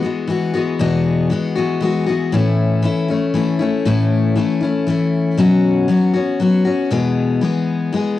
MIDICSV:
0, 0, Header, 1, 2, 480
1, 0, Start_track
1, 0, Key_signature, 4, "major"
1, 0, Tempo, 509771
1, 751, Time_signature, 3, 2, 24, 8
1, 7715, End_track
2, 0, Start_track
2, 0, Title_t, "Steel-string acoustic guitar"
2, 0, Program_c, 0, 25
2, 24, Note_on_c, 0, 66, 49
2, 35, Note_on_c, 0, 59, 45
2, 44, Note_on_c, 0, 56, 46
2, 55, Note_on_c, 0, 52, 45
2, 248, Note_off_c, 0, 52, 0
2, 259, Note_off_c, 0, 56, 0
2, 260, Note_on_c, 0, 52, 60
2, 268, Note_off_c, 0, 66, 0
2, 269, Note_off_c, 0, 59, 0
2, 270, Note_on_c, 0, 56, 57
2, 281, Note_on_c, 0, 59, 64
2, 288, Note_on_c, 0, 66, 62
2, 494, Note_off_c, 0, 66, 0
2, 505, Note_off_c, 0, 59, 0
2, 505, Note_on_c, 0, 66, 54
2, 506, Note_off_c, 0, 52, 0
2, 511, Note_off_c, 0, 56, 0
2, 516, Note_on_c, 0, 59, 48
2, 523, Note_on_c, 0, 56, 46
2, 534, Note_on_c, 0, 52, 42
2, 746, Note_off_c, 0, 52, 0
2, 747, Note_on_c, 0, 40, 69
2, 748, Note_off_c, 0, 56, 0
2, 748, Note_off_c, 0, 66, 0
2, 750, Note_off_c, 0, 59, 0
2, 753, Note_on_c, 0, 47, 68
2, 758, Note_on_c, 0, 52, 76
2, 760, Note_on_c, 0, 56, 71
2, 761, Note_on_c, 0, 59, 80
2, 769, Note_on_c, 0, 66, 71
2, 1218, Note_off_c, 0, 52, 0
2, 1222, Note_on_c, 0, 52, 61
2, 1223, Note_off_c, 0, 56, 0
2, 1229, Note_off_c, 0, 40, 0
2, 1231, Note_off_c, 0, 59, 0
2, 1232, Note_off_c, 0, 47, 0
2, 1234, Note_on_c, 0, 56, 59
2, 1240, Note_off_c, 0, 66, 0
2, 1243, Note_on_c, 0, 59, 69
2, 1253, Note_on_c, 0, 66, 64
2, 1452, Note_off_c, 0, 66, 0
2, 1464, Note_on_c, 0, 66, 50
2, 1465, Note_off_c, 0, 59, 0
2, 1467, Note_off_c, 0, 52, 0
2, 1473, Note_off_c, 0, 56, 0
2, 1476, Note_on_c, 0, 59, 46
2, 1486, Note_on_c, 0, 56, 43
2, 1493, Note_on_c, 0, 52, 37
2, 1688, Note_off_c, 0, 52, 0
2, 1699, Note_on_c, 0, 52, 57
2, 1703, Note_off_c, 0, 56, 0
2, 1707, Note_off_c, 0, 66, 0
2, 1711, Note_off_c, 0, 59, 0
2, 1715, Note_on_c, 0, 56, 60
2, 1722, Note_on_c, 0, 59, 59
2, 1729, Note_on_c, 0, 66, 63
2, 1932, Note_off_c, 0, 66, 0
2, 1943, Note_on_c, 0, 66, 49
2, 1945, Note_off_c, 0, 52, 0
2, 1945, Note_off_c, 0, 59, 0
2, 1953, Note_off_c, 0, 56, 0
2, 1956, Note_on_c, 0, 59, 47
2, 1965, Note_on_c, 0, 56, 43
2, 1974, Note_on_c, 0, 52, 39
2, 2181, Note_off_c, 0, 52, 0
2, 2187, Note_off_c, 0, 66, 0
2, 2187, Note_on_c, 0, 45, 64
2, 2192, Note_on_c, 0, 52, 68
2, 2194, Note_off_c, 0, 59, 0
2, 2196, Note_off_c, 0, 56, 0
2, 2200, Note_on_c, 0, 57, 72
2, 2202, Note_on_c, 0, 61, 77
2, 2207, Note_on_c, 0, 64, 76
2, 2648, Note_off_c, 0, 52, 0
2, 2659, Note_off_c, 0, 57, 0
2, 2660, Note_on_c, 0, 52, 64
2, 2669, Note_off_c, 0, 45, 0
2, 2670, Note_on_c, 0, 57, 59
2, 2674, Note_off_c, 0, 61, 0
2, 2674, Note_off_c, 0, 64, 0
2, 2678, Note_on_c, 0, 61, 69
2, 2686, Note_on_c, 0, 64, 70
2, 2892, Note_off_c, 0, 64, 0
2, 2903, Note_on_c, 0, 64, 49
2, 2905, Note_off_c, 0, 52, 0
2, 2907, Note_off_c, 0, 61, 0
2, 2911, Note_off_c, 0, 57, 0
2, 2918, Note_on_c, 0, 61, 43
2, 2930, Note_on_c, 0, 57, 43
2, 3143, Note_off_c, 0, 57, 0
2, 3144, Note_on_c, 0, 52, 59
2, 3147, Note_off_c, 0, 64, 0
2, 3154, Note_on_c, 0, 57, 64
2, 3155, Note_off_c, 0, 61, 0
2, 3165, Note_on_c, 0, 61, 61
2, 3172, Note_on_c, 0, 64, 67
2, 3370, Note_off_c, 0, 64, 0
2, 3381, Note_on_c, 0, 64, 56
2, 3384, Note_off_c, 0, 61, 0
2, 3387, Note_off_c, 0, 52, 0
2, 3393, Note_off_c, 0, 57, 0
2, 3395, Note_on_c, 0, 61, 47
2, 3409, Note_on_c, 0, 57, 45
2, 3626, Note_off_c, 0, 64, 0
2, 3628, Note_off_c, 0, 57, 0
2, 3628, Note_on_c, 0, 45, 70
2, 3633, Note_off_c, 0, 61, 0
2, 3634, Note_on_c, 0, 52, 71
2, 3640, Note_on_c, 0, 57, 74
2, 3644, Note_on_c, 0, 61, 76
2, 3649, Note_on_c, 0, 64, 75
2, 4090, Note_off_c, 0, 52, 0
2, 4100, Note_off_c, 0, 57, 0
2, 4101, Note_on_c, 0, 52, 61
2, 4109, Note_off_c, 0, 45, 0
2, 4112, Note_on_c, 0, 57, 65
2, 4116, Note_off_c, 0, 61, 0
2, 4119, Note_on_c, 0, 61, 59
2, 4120, Note_off_c, 0, 64, 0
2, 4132, Note_on_c, 0, 64, 63
2, 4327, Note_off_c, 0, 64, 0
2, 4338, Note_on_c, 0, 64, 49
2, 4345, Note_off_c, 0, 61, 0
2, 4346, Note_off_c, 0, 52, 0
2, 4351, Note_off_c, 0, 57, 0
2, 4357, Note_on_c, 0, 61, 44
2, 4371, Note_on_c, 0, 57, 39
2, 4582, Note_off_c, 0, 57, 0
2, 4583, Note_on_c, 0, 52, 62
2, 4584, Note_off_c, 0, 64, 0
2, 4589, Note_off_c, 0, 61, 0
2, 4593, Note_on_c, 0, 57, 66
2, 4600, Note_on_c, 0, 61, 63
2, 4612, Note_on_c, 0, 64, 66
2, 5061, Note_on_c, 0, 47, 68
2, 5065, Note_off_c, 0, 52, 0
2, 5067, Note_off_c, 0, 57, 0
2, 5068, Note_off_c, 0, 61, 0
2, 5069, Note_on_c, 0, 54, 74
2, 5071, Note_on_c, 0, 59, 75
2, 5079, Note_on_c, 0, 61, 82
2, 5080, Note_off_c, 0, 64, 0
2, 5084, Note_on_c, 0, 66, 74
2, 5524, Note_off_c, 0, 54, 0
2, 5535, Note_on_c, 0, 54, 62
2, 5544, Note_off_c, 0, 59, 0
2, 5545, Note_off_c, 0, 47, 0
2, 5547, Note_off_c, 0, 61, 0
2, 5548, Note_on_c, 0, 59, 66
2, 5557, Note_off_c, 0, 66, 0
2, 5558, Note_on_c, 0, 61, 68
2, 5568, Note_on_c, 0, 66, 65
2, 5766, Note_off_c, 0, 66, 0
2, 5777, Note_on_c, 0, 66, 51
2, 5783, Note_off_c, 0, 54, 0
2, 5786, Note_off_c, 0, 61, 0
2, 5789, Note_off_c, 0, 59, 0
2, 5797, Note_on_c, 0, 61, 46
2, 5808, Note_on_c, 0, 59, 38
2, 6020, Note_off_c, 0, 59, 0
2, 6023, Note_off_c, 0, 66, 0
2, 6023, Note_on_c, 0, 54, 56
2, 6031, Note_off_c, 0, 61, 0
2, 6032, Note_on_c, 0, 59, 58
2, 6042, Note_on_c, 0, 61, 62
2, 6049, Note_on_c, 0, 66, 67
2, 6247, Note_off_c, 0, 66, 0
2, 6258, Note_on_c, 0, 66, 48
2, 6265, Note_off_c, 0, 61, 0
2, 6266, Note_off_c, 0, 54, 0
2, 6271, Note_off_c, 0, 59, 0
2, 6277, Note_on_c, 0, 61, 46
2, 6286, Note_on_c, 0, 59, 40
2, 6502, Note_on_c, 0, 40, 74
2, 6504, Note_off_c, 0, 66, 0
2, 6505, Note_off_c, 0, 59, 0
2, 6506, Note_on_c, 0, 47, 72
2, 6510, Note_on_c, 0, 52, 76
2, 6512, Note_off_c, 0, 61, 0
2, 6514, Note_on_c, 0, 56, 74
2, 6516, Note_on_c, 0, 59, 81
2, 6520, Note_on_c, 0, 68, 70
2, 6967, Note_off_c, 0, 52, 0
2, 6978, Note_on_c, 0, 52, 57
2, 6981, Note_off_c, 0, 56, 0
2, 6985, Note_off_c, 0, 40, 0
2, 6987, Note_off_c, 0, 47, 0
2, 6990, Note_off_c, 0, 59, 0
2, 6992, Note_on_c, 0, 56, 65
2, 6994, Note_off_c, 0, 68, 0
2, 7001, Note_on_c, 0, 59, 65
2, 7009, Note_on_c, 0, 68, 68
2, 7451, Note_off_c, 0, 52, 0
2, 7461, Note_off_c, 0, 56, 0
2, 7462, Note_on_c, 0, 52, 56
2, 7471, Note_off_c, 0, 59, 0
2, 7472, Note_on_c, 0, 56, 62
2, 7478, Note_off_c, 0, 68, 0
2, 7482, Note_on_c, 0, 59, 60
2, 7493, Note_on_c, 0, 68, 58
2, 7690, Note_off_c, 0, 68, 0
2, 7705, Note_off_c, 0, 52, 0
2, 7705, Note_off_c, 0, 59, 0
2, 7710, Note_off_c, 0, 56, 0
2, 7715, End_track
0, 0, End_of_file